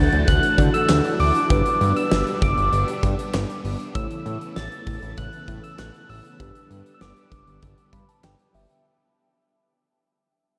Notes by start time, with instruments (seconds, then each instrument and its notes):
Already playing: string machine E3 F#3 A3 D4 F#4, synth keys D4 F#4 A4, soft synth lead A6
0.12 analog synth bass D2, closed hi-hat
0.28 analog synth bass D2, soft synth lead F#6, kick, closed hi-hat
0.43 closed hi-hat
0.58 analog synth bass D3, synth keys D4 F#4 A4, kick, closed hi-hat
0.74 soft synth lead E6, closed hi-hat
0.89 analog synth bass D2, snare, clap
1.05 closed hi-hat
1.20 analog synth bass D2, soft synth lead D6, open hi-hat
1.35 closed hi-hat
1.50 analog synth bass G1, string machine G3 B3, synth keys D4 G4 B4, soft synth lead D6, kick, closed hi-hat
1.66 closed hi-hat
1.81 analog synth bass G2, closed hi-hat
1.96 soft synth lead E6, closed hi-hat
2.12 analog synth bass G1, snare
2.27 closed hi-hat
2.42 analog synth bass G1, soft synth lead D6, kick, closed hi-hat
2.57 analog synth bass G1, closed hi-hat
2.73 analog synth bass G1, closed hi-hat
2.88 closed hi-hat
3.03 analog synth bass G2, kick, closed hi-hat
3.19 closed hi-hat
3.34 analog synth bass G1, snare, clap
3.50 closed hi-hat
3.65 analog synth bass G1, open hi-hat
3.80 closed hi-hat
3.95 analog synth bass A1, string machine C#3 E3 A3 B3 E4, synth keys E4 A4 C#5, soft synth lead E6, kick, closed hi-hat
4.11 closed hi-hat
4.26 analog synth bass A2, closed hi-hat
4.41 closed hi-hat
4.56 analog synth bass A1, soft synth lead A6, snare
4.72 closed hi-hat
4.87 analog synth bass A1, kick, open hi-hat
5.02 analog synth bass A1, closed hi-hat
5.17 analog synth bass A1, soft synth lead F#6, kick, closed hi-hat
5.33 closed hi-hat
5.48 analog synth bass A2, kick, closed hi-hat
5.64 soft synth lead E6, closed hi-hat
5.79 analog synth bass A1, soft synth lead F#6, snare, clap
5.94 closed hi-hat
6.09 analog synth bass A1, soft synth lead E6, open hi-hat
6.25 closed hi-hat
6.40 analog synth bass G1, string machine D3 G3, synth keys D4 G4 B4, kick, closed hi-hat
6.55 closed hi-hat
6.71 analog synth bass G2, closed hi-hat
6.86 closed hi-hat
6.94 soft synth lead E6
7.01 analog synth bass G1, soft synth lead D6, snare
7.17 closed hi-hat
7.32 analog synth bass G1, kick, closed hi-hat
7.47 analog synth bass G1, closed hi-hat
7.62 analog synth bass G1, kick, closed hi-hat
7.78 closed hi-hat
7.93 analog synth bass G2, synth keys B5, kick, closed hi-hat
8.09 synth keys A5, closed hi-hat
8.24 analog synth bass G1, synth keys G5, snare, clap
8.39 closed hi-hat
8.54 analog synth bass G1, synth keys E5, open hi-hat
8.70 closed hi-hat